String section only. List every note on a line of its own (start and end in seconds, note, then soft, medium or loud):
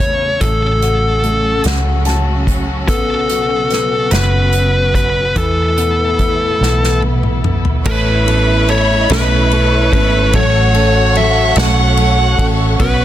0.00 5.32 C#3 medium
0.00 0.37 E3 medium
0.00 0.38 A3 soft
0.00 0.37 B3 medium
0.00 0.37 E4 medium
0.42 2.86 A2 medium
0.42 5.33 F#3 soft
0.42 5.32 C#4 medium
0.42 5.32 F#4 medium
2.88 7.82 B2 medium
5.36 7.84 A2 medium
5.36 7.83 E3 medium
5.36 7.84 B3 medium
5.36 7.84 E4 medium
7.86 12.75 A4 medium
7.86 12.75 C#5 medium
7.86 10.31 E5 medium
7.86 10.31 B5 medium
10.34 12.78 F#5 medium
10.34 12.77 C#6 medium
12.79 13.05 B4 medium
12.79 13.05 C#5 medium
12.79 13.05 F#5 medium
12.79 13.05 C#6 medium